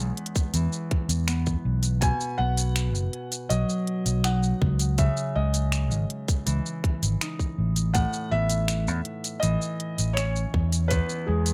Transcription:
0.00 0.11 B1 loud
0.00 2.07 E2 medium
0.00 0.54 E3 medium
0.00 2.07 G#3 medium
0.00 1.27 B3 medium
0.00 1.21 C#4 medium
0.00 0.12 G#4 medium
0.17 closed hi-hat soft
0.26 closed hi-hat soft
0.36 kick loud
0.36 shaker medium
0.54 0.66 E2 medium
0.54 2.07 E3 medium
0.54 closed hi-hat medium
0.54 shaker medium
0.73 shaker soft
0.91 kick loud
0.91 closed hi-hat soft
1.09 1.55 E2 loud
1.09 closed hi-hat soft
1.09 shaker medium
1.28 2.39 B3 medium
1.28 finger snap loud
1.28 closed hi-hat medium
1.28 shaker medium
1.46 kick medium
1.46 shaker soft
1.65 2.11 B1 medium
1.83 closed hi-hat soft
1.83 shaker medium
2.01 5.03 B2 medium
2.01 2.40 G#5 loud
2.01 kick loud
2.01 closed hi-hat medium
2.01 shaker medium
2.21 shaker soft
2.38 2.94 B1 medium
2.38 5.50 B3 medium
2.38 3.53 F#5 loud
2.57 closed hi-hat soft
2.57 shaker medium
2.76 finger snap loud
2.76 closed hi-hat medium
2.76 shaker medium
2.94 3.07 F#1 loud
2.94 shaker soft
3.13 closed hi-hat soft
3.32 closed hi-hat soft
3.32 shaker medium
3.49 3.63 B1 medium
3.49 5.03 F#3 medium
3.49 4.26 D#5 medium
3.49 closed hi-hat medium
3.49 shaker medium
3.69 shaker soft
3.87 closed hi-hat soft
4.06 4.52 B1 medium
4.06 closed hi-hat soft
4.06 shaker medium
4.24 7.21 D#4 medium
4.24 5.01 F#5 medium
4.24 finger snap medium
4.24 closed hi-hat medium
4.24 shaker medium
4.43 shaker soft
4.62 5.07 C#2 medium
4.62 kick loud
4.79 closed hi-hat soft
4.79 shaker medium
4.98 8.00 C#3 medium
4.98 5.36 E5 medium
4.98 kick loud
4.98 closed hi-hat medium
4.98 shaker medium
5.17 shaker soft
5.35 5.92 C#2 medium
5.35 8.00 G#3 medium
5.35 6.06 D#5 medium
5.54 closed hi-hat soft
5.54 shaker medium
5.72 finger snap medium
5.72 closed hi-hat medium
5.72 shaker medium
5.91 6.04 G#1 loud
5.91 shaker soft
6.10 closed hi-hat soft
6.28 kick loud
6.28 closed hi-hat soft
6.28 shaker medium
6.46 6.59 C#2 medium
6.46 9.42 E3 medium
6.46 closed hi-hat medium
6.46 shaker medium
6.66 shaker soft
6.84 kick loud
6.84 closed hi-hat soft
7.03 7.15 G#1 medium
7.03 closed hi-hat soft
7.03 shaker medium
7.21 9.48 D#4 medium
7.21 finger snap medium
7.21 closed hi-hat medium
7.21 shaker medium
7.39 kick medium
7.39 shaker soft
7.58 8.04 A1 medium
7.76 closed hi-hat soft
7.76 shaker medium
7.94 10.96 A2 medium
7.94 8.32 F#5 loud
7.94 kick loud
7.94 closed hi-hat medium
7.94 shaker medium
8.13 shaker soft
8.31 8.88 A1 medium
8.31 11.54 B3 medium
8.31 9.46 E5 loud
8.50 closed hi-hat soft
8.50 shaker medium
8.68 finger snap loud
8.68 closed hi-hat medium
8.68 shaker medium
8.88 9.00 E2 loud
8.88 shaker soft
9.05 closed hi-hat soft
9.24 closed hi-hat soft
9.24 shaker medium
9.40 9.55 A1 medium
9.40 11.54 E3 medium
9.40 10.18 D#5 loud
9.40 closed hi-hat medium
9.40 shaker medium
9.62 shaker soft
9.80 closed hi-hat soft
9.98 10.44 A1 medium
9.98 closed hi-hat soft
9.98 shaker medium
10.13 11.54 C#4 medium
10.13 10.92 C#5 loud
10.13 finger snap medium
10.13 closed hi-hat soft
10.18 shaker medium
10.36 shaker soft
10.54 11.00 E2 medium
10.54 kick medium
10.72 closed hi-hat soft
10.72 shaker medium
10.88 11.54 E2 medium
10.88 11.28 B4 medium
10.88 kick loud
10.88 closed hi-hat medium
10.88 shaker medium
11.09 shaker soft
11.26 11.54 E2 medium
11.26 11.54 G#3 medium
11.26 11.54 G#4 medium
11.46 closed hi-hat soft
11.46 shaker medium

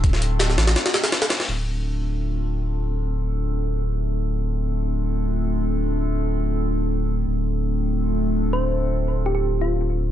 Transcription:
0.00 0.57 D1 loud
0.00 kick loud
0.00 closed hi-hat medium
0.04 0.92 A3 loud
0.04 0.92 C4 loud
0.04 0.92 D4 loud
0.04 0.92 F4 loud
0.04 0.92 A4 loud
0.04 closed hi-hat medium
0.13 snare soft
0.22 closed hi-hat medium
0.39 snare loud
0.39 closed hi-hat medium
0.50 snare soft
0.58 0.76 A1 loud
0.58 snare loud
0.58 closed hi-hat medium
0.67 snare loud
0.67 closed hi-hat medium
0.76 snare loud
0.76 closed hi-hat medium
0.86 snare loud
0.86 closed hi-hat medium
0.93 snare loud
0.93 closed hi-hat medium
1.04 snare loud
1.04 snare soft
1.04 closed hi-hat medium
1.12 snare loud
1.12 closed hi-hat medium
1.12 open hi-hat medium
1.22 snare loud
1.22 snare soft
1.22 closed hi-hat medium
1.30 snare loud
1.30 closed hi-hat medium
1.30 open hi-hat medium
1.36 snare medium
1.36 open hi-hat medium
1.40 snare medium
1.40 open hi-hat medium
1.43 snare medium
1.43 open hi-hat medium
1.48 7.25 D1 medium
1.48 4.36 A3 medium
1.48 4.36 C4 medium
1.48 4.36 D4 medium
1.48 4.36 F4 medium
1.48 4.36 A4 medium
4.37 7.25 A3 medium
4.37 7.25 C4 medium
4.37 7.25 D4 medium
4.37 7.25 F4 medium
4.37 7.25 A4 medium
7.27 10.12 D1 medium
7.27 10.12 A3 medium
7.27 10.12 C4 medium
7.27 10.12 D4 medium
7.27 10.12 F4 medium
7.27 10.12 A4 medium
8.53 8.75 C5 medium
9.26 9.32 G4 medium
9.35 9.40 G4 medium
9.61 9.98 F4 medium

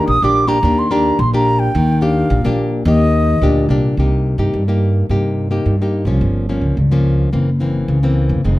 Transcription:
0.00 0.17 A#3 medium
0.00 0.17 D4 medium
0.00 0.18 G4 medium
0.07 0.19 A#1 medium
0.07 0.61 A#2 medium
0.07 0.25 D#6 loud
0.22 0.57 A#1 medium
0.22 0.46 A#3 medium
0.22 0.46 D4 medium
0.22 0.46 G4 medium
0.22 0.50 D6 loud
0.47 0.58 A#3 medium
0.47 0.58 D4 medium
0.47 0.58 G4 medium
0.47 0.80 A#5 loud
0.63 1.10 D#2 loud
0.63 1.17 D#3 medium
0.63 0.87 A#3 medium
0.63 0.87 D4 medium
0.63 0.87 G4 medium
0.79 0.93 C6 medium
0.91 1.17 A#3 medium
0.91 1.17 D4 medium
0.91 1.17 G4 medium
0.91 1.21 A#5 loud
1.19 1.66 A#1 loud
1.19 1.72 A#2 medium
1.19 1.33 C6 loud
1.34 1.70 A#3 medium
1.34 1.71 D4 medium
1.34 1.71 G4 medium
1.34 1.61 A#5 loud
1.59 2.04 G5 loud
1.75 2.22 D#2 loud
1.75 2.28 D#3 medium
2.01 2.39 A#3 medium
2.01 2.39 D4 medium
2.01 2.40 G4 medium
2.01 2.59 F5 medium
2.30 2.42 A#1 loud
2.30 2.83 A#2 medium
2.44 2.80 A#1 medium
2.44 2.82 A#3 medium
2.44 2.82 D4 medium
2.44 2.82 G4 medium
2.85 3.33 D#2 loud
2.85 3.39 D#3 medium
2.85 3.38 A#3 medium
2.85 3.38 G4 medium
2.85 3.66 D#5 loud
3.41 3.67 D2 medium
3.41 3.95 A#2 medium
3.41 3.65 A#3 medium
3.41 3.66 D4 medium
3.41 3.66 G4 medium
3.69 3.94 C2 medium
3.69 3.96 A#3 medium
3.69 3.96 D4 medium
3.69 3.96 G4 medium
3.97 4.33 C2 medium
3.97 4.51 C3 soft
3.97 4.36 A#3 medium
3.97 4.36 D#4 soft
3.97 4.36 G4 soft
4.38 4.50 G2 medium
4.38 4.62 A#3 medium
4.38 4.62 D#4 medium
4.38 4.63 G4 medium
4.54 5.01 G2 medium
4.54 5.07 G2 soft
4.68 5.05 A#3 medium
4.68 5.05 D#4 medium
4.68 5.06 G4 medium
5.09 5.57 G2 medium
5.09 5.63 C3 soft
5.09 5.47 A#3 soft
5.09 5.47 D#4 soft
5.09 5.47 G4 medium
5.51 5.75 A#3 medium
5.51 5.75 D#4 medium
5.51 5.75 G4 medium
5.66 6.06 G2 medium
5.66 6.19 G2 medium
5.82 6.04 A#3 medium
5.82 6.04 D#4 soft
5.82 6.04 G4 medium
6.05 6.18 C2 medium
6.05 6.48 F3 medium
6.05 6.48 A#3 medium
6.05 6.48 C#4 medium
6.21 6.57 G1 medium
6.21 6.74 G2 soft
6.49 6.75 F3 soft
6.49 6.75 A#3 soft
6.49 6.76 C#4 soft
6.61 6.74 C#2 medium
6.77 7.25 C#2 medium
6.77 7.31 G2 soft
6.92 7.29 F3 medium
6.92 7.29 A#3 medium
6.92 7.29 C#4 medium
7.33 7.81 F#1 medium
7.33 7.86 F#2 soft
7.33 7.49 E3 soft
7.33 7.50 A#3 soft
7.33 7.50 C4 medium
7.60 7.98 E3 soft
7.60 7.99 A#3 medium
7.60 7.99 C4 medium
7.88 8.31 C#2 medium
7.88 8.42 C#3 medium
8.03 8.41 E3 medium
8.03 8.41 A#3 medium
8.03 8.41 C4 medium
8.29 8.42 F#1 medium
8.44 8.59 F1 medium
8.44 8.59 F2 medium
8.44 8.59 D#3 soft
8.44 8.59 G#3 soft
8.44 8.59 C4 medium

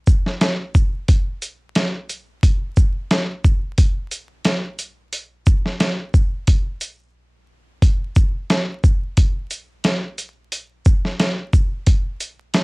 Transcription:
0.07 kick loud
0.07 shaker medium
0.26 snare soft
0.41 snare loud
0.41 closed hi-hat medium
0.75 kick loud
0.75 shaker medium
1.08 kick loud
1.08 closed hi-hat loud
1.42 closed hi-hat medium
1.42 shaker medium
1.75 snare loud
1.75 closed hi-hat medium
2.09 closed hi-hat medium
2.09 shaker medium
2.43 kick loud
2.43 closed hi-hat loud
2.77 kick medium
2.77 shaker medium
3.11 snare loud
3.11 closed hi-hat medium
3.44 kick loud
3.44 shaker medium
3.78 kick loud
3.78 closed hi-hat loud
4.11 closed hi-hat medium
4.11 shaker medium
4.45 snare loud
4.45 closed hi-hat medium
4.79 closed hi-hat medium
4.79 shaker medium
5.13 closed hi-hat loud
5.46 kick loud
5.46 shaker medium
5.66 snare soft
5.80 snare loud
5.80 closed hi-hat medium
6.14 kick loud
6.14 shaker medium
6.47 kick loud
6.47 closed hi-hat loud
6.81 closed hi-hat medium
6.81 shaker medium
7.82 kick loud
7.82 closed hi-hat loud
8.16 kick loud
8.16 shaker medium
8.50 snare loud
8.50 closed hi-hat medium
8.84 kick loud
8.84 shaker medium
9.17 kick loud
9.17 closed hi-hat loud
9.51 closed hi-hat medium
9.51 shaker medium
9.84 snare loud
9.84 closed hi-hat medium
10.18 closed hi-hat medium
10.18 shaker medium
10.52 closed hi-hat loud
10.85 kick loud
10.85 shaker medium
11.05 snare soft
11.20 snare loud
11.20 closed hi-hat medium
11.53 kick loud
11.53 shaker medium
11.87 kick loud
11.87 closed hi-hat loud
12.20 closed hi-hat medium
12.20 shaker medium
12.54 snare loud
12.54 closed hi-hat medium

